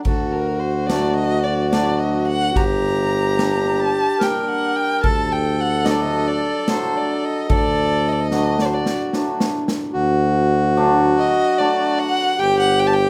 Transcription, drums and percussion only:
0.05 kick, ride
0.89 snare, ride
1.73 snare, ride
2.56 kick, ride
3.39 snare, ride
4.21 snare, ride
5.04 kick, ride
5.86 snare, ride
6.68 snare, ride
7.49 kick, ride
8.31 snare
8.59 snare
8.86 snare
9.13 snare
9.40 snare
9.68 snare

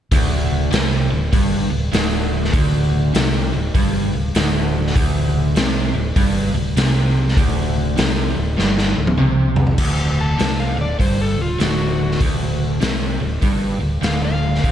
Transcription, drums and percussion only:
0.12 kick, open hi-hat
0.72 snare, open hi-hat
1.33 kick, open hi-hat
1.93 snare, open hi-hat
2.44 snare
2.53 kick, open hi-hat
3.15 snare, open hi-hat
3.75 kick, open hi-hat
4.35 snare, open hi-hat
4.87 snare
4.96 kick, open hi-hat
5.56 snare, open hi-hat
6.16 kick, open hi-hat
6.77 snare, open hi-hat
7.28 snare
7.37 kick, open hi-hat
7.97 snare, open hi-hat
8.59 snare
8.78 snare
9.07 high tom
9.17 mid tom
9.56 floor tom
9.67 floor tom
9.78 kick, crash
10.39 snare, open hi-hat
11.00 kick, open hi-hat
11.60 snare, open hi-hat
12.12 snare
12.21 kick, open hi-hat
12.81 snare, open hi-hat
13.42 kick, open hi-hat
14.03 snare, open hi-hat
14.55 snare
14.64 kick, open hi-hat

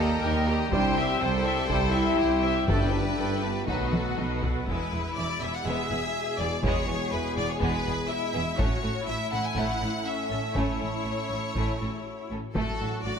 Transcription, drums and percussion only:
0.72 taiko
1.70 taiko
2.68 taiko
3.68 taiko
3.93 taiko high
4.18 taiko high
4.42 taiko low
4.68 taiko
6.63 taiko
7.61 taiko
8.59 taiko
9.56 taiko
10.55 taiko
11.55 taiko
12.55 taiko

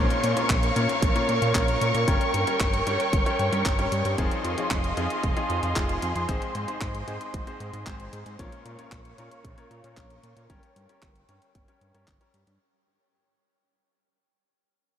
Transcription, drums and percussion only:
0.10 closed hi-hat
0.24 closed hi-hat
0.37 closed hi-hat
0.50 kick, clap, closed hi-hat
0.63 closed hi-hat
0.76 closed hi-hat
0.89 closed hi-hat
1.02 kick, closed hi-hat
1.16 closed hi-hat
1.29 closed hi-hat
1.42 closed hi-hat
1.55 kick, clap, closed hi-hat
1.68 closed hi-hat
1.81 closed hi-hat
1.95 closed hi-hat
2.08 kick, closed hi-hat
2.21 closed hi-hat
2.34 closed hi-hat
2.47 closed hi-hat
2.60 kick, clap, closed hi-hat
2.74 closed hi-hat
2.87 closed hi-hat
3.00 closed hi-hat
3.13 kick, closed hi-hat
3.26 closed hi-hat
3.39 closed hi-hat
3.53 closed hi-hat
3.66 kick, clap, closed hi-hat
3.79 closed hi-hat
3.92 closed hi-hat
4.05 closed hi-hat
4.18 kick, closed hi-hat
4.31 closed hi-hat
4.45 closed hi-hat
4.58 closed hi-hat
4.71 kick, clap, closed hi-hat
4.84 closed hi-hat
4.97 closed hi-hat
5.10 closed hi-hat
5.24 kick, closed hi-hat
5.37 closed hi-hat
5.50 closed hi-hat
5.63 closed hi-hat
5.76 kick, clap, closed hi-hat
5.89 closed hi-hat
6.02 closed hi-hat
6.16 closed hi-hat
6.29 kick, closed hi-hat
6.42 closed hi-hat
6.55 closed hi-hat
6.68 closed hi-hat
6.81 kick, clap, closed hi-hat
6.95 closed hi-hat
7.08 closed hi-hat
7.21 closed hi-hat
7.34 kick, closed hi-hat
7.47 closed hi-hat
7.60 closed hi-hat
7.74 closed hi-hat
7.87 kick, clap, closed hi-hat
8.00 closed hi-hat
8.13 closed hi-hat
8.26 closed hi-hat
8.39 kick, closed hi-hat
8.52 closed hi-hat
8.66 closed hi-hat
8.79 closed hi-hat
8.92 kick, clap, closed hi-hat
9.05 closed hi-hat
9.18 closed hi-hat
9.31 closed hi-hat
9.45 kick, closed hi-hat
9.58 closed hi-hat
9.71 closed hi-hat
9.84 closed hi-hat
9.97 kick, clap, closed hi-hat
10.10 closed hi-hat
10.23 closed hi-hat
10.37 closed hi-hat
10.50 kick, closed hi-hat
10.63 closed hi-hat
10.76 closed hi-hat
10.89 closed hi-hat
11.02 kick, clap, closed hi-hat
11.16 closed hi-hat
11.29 closed hi-hat
11.42 closed hi-hat
11.55 kick, closed hi-hat
11.68 closed hi-hat
11.81 closed hi-hat
11.95 closed hi-hat
12.08 kick, clap, closed hi-hat
12.21 closed hi-hat
12.34 closed hi-hat
12.47 closed hi-hat

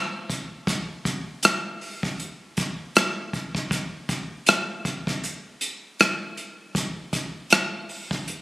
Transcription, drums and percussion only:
0.30 kick, closed hi-hat
0.67 kick, closed hi-hat
1.05 kick, closed hi-hat
1.43 cross-stick, closed hi-hat
1.81 open hi-hat
2.03 kick
2.20 closed hi-hat
2.57 kick, closed hi-hat
2.96 cross-stick, closed hi-hat
3.33 kick, closed hi-hat
3.55 kick
3.71 kick, closed hi-hat
4.09 kick, closed hi-hat
4.46 cross-stick, closed hi-hat
4.85 kick, closed hi-hat
5.07 kick
5.24 closed hi-hat
5.61 closed hi-hat
6.00 cross-stick, closed hi-hat
6.37 closed hi-hat
6.75 kick, closed hi-hat
7.13 kick, closed hi-hat
7.50 cross-stick, closed hi-hat
7.89 open hi-hat
8.11 kick
8.28 closed hi-hat

